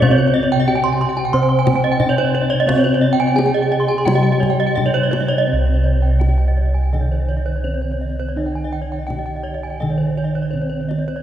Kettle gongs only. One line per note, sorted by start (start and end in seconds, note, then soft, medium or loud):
0.00 0.64 C3 medium
0.00 1.96 C4 medium
0.67 0.75 C#4 soft
1.33 3.33 C3 medium
2.00 2.08 C#4 soft
2.67 4.73 C4 medium
3.35 3.43 C#4 soft
4.06 6.17 C3 medium
4.77 4.85 C#4 soft
5.48 7.61 C4 soft
5.53 9.81 C2 medium
6.20 6.28 C#4 soft
7.64 7.72 C#4 soft
8.36 10.50 D#4 soft
9.08 9.16 C#4 soft
9.82 11.23 D#3 medium
10.53 10.61 C#4 soft